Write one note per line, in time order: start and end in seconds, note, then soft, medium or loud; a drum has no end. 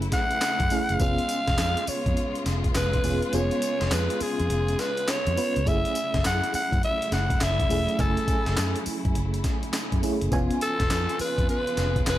0.00 10.28 C#3 medium
0.00 0.96 F#3 medium
0.00 0.71 A3 medium
0.00 0.96 A3 medium
0.00 0.71 C#4 medium
0.00 0.72 E4 medium
0.00 0.96 E4 loud
0.00 0.72 G#4 medium
0.00 1.02 B4 medium
0.00 closed hi-hat medium
0.12 1.02 F#5 loud
0.12 kick medium
0.12 snare medium
0.12 closed hi-hat medium
0.12 tambourine medium
0.31 closed hi-hat medium
0.41 snare loud
0.41 clap loud
0.41 closed hi-hat medium
0.41 tambourine medium
0.60 0.69 F#2 medium
0.60 kick medium
0.60 closed hi-hat medium
0.70 0.97 A3 medium
0.70 0.97 C#4 medium
0.70 0.97 E4 medium
0.70 0.97 G#4 medium
0.70 open hi-hat medium
0.70 tambourine medium
0.89 0.98 F#1 medium
0.89 closed hi-hat medium
1.00 1.16 F1 loud
1.00 5.62 G#3 medium
1.00 1.97 B3 medium
1.00 5.62 B3 medium
1.00 1.98 C#4 medium
1.00 5.62 F4 medium
1.00 1.98 F4 medium
1.00 1.98 G#4 medium
1.00 1.90 F5 loud
1.00 kick loud
1.00 closed hi-hat medium
1.00 tambourine medium
1.18 closed hi-hat medium
1.29 closed hi-hat medium
1.29 tambourine medium
1.47 1.57 F1 medium
1.47 kick medium
1.47 snare medium
1.47 closed hi-hat medium
1.58 1.74 F2 loud
1.58 snare loud
1.58 clap loud
1.58 closed hi-hat medium
1.58 tambourine loud
1.77 closed hi-hat medium
1.87 2.46 C#5 medium
1.87 muted fingered electric bass stroke medium
1.87 open hi-hat medium
1.87 tambourine medium
2.06 2.15 F2 medium
2.06 kick loud
2.06 closed hi-hat soft
2.17 closed hi-hat medium
2.35 closed hi-hat medium
2.46 2.70 F1 medium
2.46 snare medium
2.46 closed hi-hat medium
2.46 tambourine medium
2.64 kick medium
2.64 closed hi-hat medium
2.75 2.99 F1 loud
2.75 3.36 B4 medium
2.75 snare loud
2.75 clap medium
2.75 closed hi-hat medium
2.75 tambourine loud
2.93 kick medium
2.93 closed hi-hat medium
3.04 3.20 E1 loud
3.04 3.30 B3 medium
3.04 3.30 C#4 medium
3.04 3.30 F4 medium
3.04 3.30 G#4 medium
3.04 open hi-hat medium
3.04 tambourine medium
3.22 closed hi-hat medium
3.33 3.49 F1 loud
3.33 4.30 B3 medium
3.33 4.31 C#4 medium
3.33 4.31 F4 medium
3.33 4.31 G#4 medium
3.33 3.95 C#5 loud
3.33 closed hi-hat medium
3.33 tambourine medium
3.51 closed hi-hat medium
3.62 closed hi-hat medium
3.62 tambourine medium
3.81 3.90 F1 medium
3.81 snare medium
3.81 closed hi-hat medium
3.91 4.07 F2 loud
3.91 4.23 B4 medium
3.91 snare loud
3.91 clap loud
3.91 closed hi-hat medium
3.91 tambourine loud
4.10 closed hi-hat medium
4.20 4.81 G#4 loud
4.20 muted fingered electric bass stroke soft
4.20 open hi-hat medium
4.20 tambourine medium
4.40 4.48 F2 medium
4.40 closed hi-hat soft
4.50 4.74 F1 loud
4.50 closed hi-hat medium
4.68 closed hi-hat medium
4.79 5.11 B4 loud
4.79 snare medium
4.79 closed hi-hat medium
4.79 tambourine medium
4.97 closed hi-hat medium
5.08 5.69 C#5 loud
5.08 snare loud
5.08 clap loud
5.08 closed hi-hat medium
5.08 tambourine medium
5.27 5.35 F2 loud
5.27 closed hi-hat medium
5.37 5.63 B3 medium
5.37 5.63 C#4 medium
5.37 5.63 F4 medium
5.37 5.63 B4 medium
5.37 open hi-hat medium
5.37 tambourine medium
5.56 5.65 C#2 medium
5.56 closed hi-hat medium
5.66 5.82 F#1 loud
5.66 10.28 F#3 medium
5.66 6.63 A3 medium
5.66 10.28 A3 medium
5.66 6.63 C#4 medium
5.66 10.28 E4 medium
5.66 6.63 E4 medium
5.66 6.64 G#4 medium
5.66 6.25 E5 loud
5.66 kick loud
5.66 closed hi-hat medium
5.66 tambourine medium
5.85 closed hi-hat medium
5.95 closed hi-hat medium
5.95 tambourine medium
6.14 6.23 F#1 medium
6.14 kick loud
6.14 snare medium
6.14 closed hi-hat medium
6.24 6.40 F#2 loud
6.24 6.52 F#5 loud
6.24 snare loud
6.24 clap loud
6.24 closed hi-hat medium
6.24 tambourine loud
6.44 closed hi-hat medium
6.54 6.81 F#5 loud
6.54 muted fingered electric bass stroke soft
6.54 open hi-hat medium
6.54 tambourine medium
6.72 6.81 F#2 medium
6.72 kick loud
6.72 closed hi-hat soft
6.83 7.11 E5 loud
6.83 closed hi-hat medium
7.02 closed hi-hat medium
7.12 7.36 F#1 medium
7.12 7.45 F#5 loud
7.12 snare medium
7.12 closed hi-hat medium
7.12 tambourine medium
7.30 kick loud
7.30 closed hi-hat medium
7.41 7.65 F#1 loud
7.41 8.02 E5 loud
7.41 snare loud
7.41 clap loud
7.41 closed hi-hat medium
7.41 tambourine medium
7.60 kick medium
7.60 closed hi-hat medium
7.70 7.86 E1 medium
7.70 7.95 A3 medium
7.70 7.95 C#4 medium
7.70 7.96 E4 medium
7.70 7.96 G#4 medium
7.70 open hi-hat medium
7.70 tambourine medium
7.89 closed hi-hat soft
7.99 8.15 F#1 loud
7.99 8.96 A3 medium
7.99 8.96 C#4 medium
7.99 8.96 E4 medium
7.99 8.87 A4 medium
7.99 8.97 G#5 medium
7.99 kick loud
7.99 closed hi-hat medium
7.99 tambourine medium
8.17 closed hi-hat medium
8.28 kick loud
8.28 closed hi-hat medium
8.28 tambourine medium
8.46 8.56 F#1 medium
8.46 snare medium
8.46 closed hi-hat medium
8.57 8.73 F#2 loud
8.57 snare loud
8.57 clap loud
8.57 closed hi-hat medium
8.57 tambourine loud
8.76 closed hi-hat medium
8.86 muted fingered electric bass stroke soft
8.86 open hi-hat medium
8.86 tambourine medium
9.05 9.14 F#2 medium
9.05 kick loud
9.05 closed hi-hat soft
9.15 9.40 F#1 loud
9.15 closed hi-hat medium
9.34 closed hi-hat medium
9.44 kick medium
9.44 snare medium
9.44 closed hi-hat medium
9.44 tambourine medium
9.63 closed hi-hat medium
9.73 snare loud
9.73 clap loud
9.73 closed hi-hat medium
9.73 tambourine medium
9.92 10.01 F#2 loud
9.92 kick medium
9.92 closed hi-hat medium
10.03 10.28 A3 medium
10.03 10.29 C#4 medium
10.03 10.29 E4 medium
10.03 10.29 G#4 loud
10.03 open hi-hat medium
10.03 tambourine medium
10.21 10.30 F#1 medium
10.21 closed hi-hat soft
10.31 10.48 F1 loud
10.31 12.18 C#3 medium
10.31 12.18 F3 medium
10.31 11.29 B3 loud
10.31 12.18 B3 medium
10.31 11.29 C#4 medium
10.31 12.18 F4 medium
10.31 11.29 F4 medium
10.31 11.30 G#5 loud
10.31 kick loud
10.31 closed hi-hat medium
10.31 tambourine medium
10.51 closed hi-hat medium
10.61 11.16 A4 loud
10.61 closed hi-hat medium
10.61 tambourine medium
10.80 10.89 F1 medium
10.80 kick medium
10.80 snare medium
10.80 closed hi-hat medium
10.90 11.06 F2 loud
10.90 snare loud
10.90 clap loud
10.90 closed hi-hat medium
10.90 tambourine loud
11.09 closed hi-hat medium
11.19 11.47 B4 loud
11.19 muted fingered electric bass stroke medium
11.19 open hi-hat medium
11.19 tambourine medium
11.38 11.47 F2 medium
11.38 kick loud
11.38 closed hi-hat medium
11.49 12.03 B4 loud
11.49 closed hi-hat medium
11.67 closed hi-hat medium
11.77 12.02 F1 loud
11.77 snare medium
11.77 closed hi-hat medium
11.77 tambourine medium
11.96 kick medium
11.96 closed hi-hat medium
12.07 12.18 F1 medium
12.07 12.18 B4 loud
12.07 snare loud
12.07 clap loud
12.07 closed hi-hat medium
12.07 tambourine medium